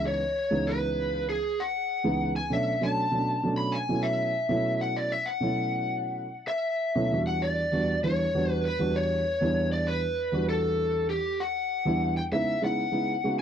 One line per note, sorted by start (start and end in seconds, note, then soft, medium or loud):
0.00 0.21 C#2 medium
0.00 0.22 E3 medium
0.00 0.22 G#3 medium
0.00 0.22 B3 medium
0.00 0.22 D#4 medium
0.07 0.69 C#5 medium
0.51 1.34 C#2 medium
0.51 1.34 E3 medium
0.51 1.34 G#3 medium
0.51 1.35 B3 medium
0.51 1.35 D#4 medium
0.67 1.29 B4 medium
1.29 1.61 G#4 medium
1.60 2.36 F#5 medium
2.04 2.36 C#2 medium
2.04 2.36 E3 medium
2.04 2.36 G#3 medium
2.04 2.36 B3 medium
2.04 2.36 D#4 medium
2.36 2.50 G#5 medium
2.50 2.71 B2 medium
2.50 2.72 F#3 medium
2.50 2.72 A3 medium
2.50 2.72 C#4 medium
2.50 2.72 D4 medium
2.50 2.84 E5 medium
2.81 3.02 B2 medium
2.81 3.02 F#3 medium
2.81 3.03 A3 medium
2.81 3.03 C#4 medium
2.81 3.03 D4 medium
2.81 3.55 A5 medium
3.11 3.33 B2 medium
3.11 3.33 F#3 medium
3.11 3.33 A3 soft
3.11 3.33 C#4 medium
3.11 3.34 D4 medium
3.43 3.74 B2 medium
3.43 3.75 F#3 medium
3.43 3.75 A3 medium
3.43 3.75 C#4 medium
3.43 3.75 D4 medium
3.58 3.74 B5 medium
3.72 4.05 G#5 medium
3.89 4.31 B2 medium
3.89 4.31 F#3 medium
3.89 4.31 A3 medium
3.89 4.31 C#4 medium
3.89 4.31 E4 medium
4.03 4.83 E5 medium
4.49 5.12 B2 medium
4.49 5.12 F#3 medium
4.49 5.12 A3 medium
4.49 5.13 C#4 medium
4.49 5.13 E4 medium
4.81 4.97 F#5 medium
4.96 5.12 D5 medium
5.12 5.28 E5 medium
5.26 6.53 F#5 medium
5.41 6.24 B2 medium
5.41 6.25 F#3 medium
5.41 6.25 A3 medium
5.41 6.25 C#4 medium
5.41 6.26 E4 medium
6.48 7.22 E5 medium
6.95 7.11 B2 medium
6.95 7.11 F#3 medium
6.95 7.11 A3 medium
6.95 7.11 C#4 medium
6.95 7.12 E4 medium
7.12 7.60 E2 medium
7.12 7.61 G3 medium
7.12 7.61 B3 medium
7.12 7.61 D4 medium
7.12 7.61 F#4 medium
7.27 7.41 F#5 medium
7.42 7.99 D5 medium
7.72 7.93 E2 medium
7.72 7.93 G3 medium
7.72 7.93 B3 medium
7.72 7.93 D4 medium
7.72 7.94 F#4 medium
8.03 8.24 E2 medium
8.03 8.24 G3 soft
8.03 8.24 B3 soft
8.03 8.24 D4 soft
8.03 8.24 E4 medium
8.03 8.52 C#5 medium
8.34 8.65 E2 medium
8.34 8.65 G3 medium
8.34 8.65 B3 medium
8.34 8.66 D4 medium
8.34 8.65 F#4 medium
8.52 8.65 B4 medium
8.65 8.96 B4 medium
8.79 9.21 E2 medium
8.79 9.21 G3 medium
8.79 9.21 B3 medium
8.79 9.21 D4 medium
8.79 9.21 F#4 medium
8.96 9.72 C#5 medium
9.41 10.03 E2 medium
9.41 10.03 G3 medium
9.41 10.03 B3 medium
9.41 10.04 D4 medium
9.41 10.04 E4 medium
9.72 9.86 D5 medium
9.88 10.49 B4 medium
10.32 11.15 E2 medium
10.32 11.15 G3 medium
10.32 11.16 B3 medium
10.32 11.16 D4 medium
10.32 11.16 F#4 medium
10.49 11.09 A4 medium
11.10 11.41 G4 medium
11.40 12.17 F#5 medium
11.85 12.17 E2 medium
11.85 12.17 G3 medium
11.85 12.17 B3 medium
11.85 12.17 D4 medium
11.85 12.17 E4 medium
12.17 12.22 G5 medium
12.32 12.52 C#3 medium
12.32 12.53 G#3 medium
12.32 12.53 B3 medium
12.32 12.53 D#4 medium
12.32 12.53 E4 medium
12.32 12.64 E5 medium
12.61 12.82 C#3 medium
12.61 12.83 G#3 medium
12.61 12.83 B3 medium
12.61 12.83 D#4 medium
12.61 12.83 E4 medium
12.61 13.36 F#5 medium
12.91 13.13 C#3 medium
12.91 13.13 G#3 medium
12.91 13.13 B3 medium
12.91 13.13 D#4 medium
12.91 13.14 E4 medium
13.24 13.42 C#3 medium
13.24 13.42 G#3 medium
13.24 13.42 B3 medium
13.24 13.42 D#4 medium
13.24 13.42 F#4 medium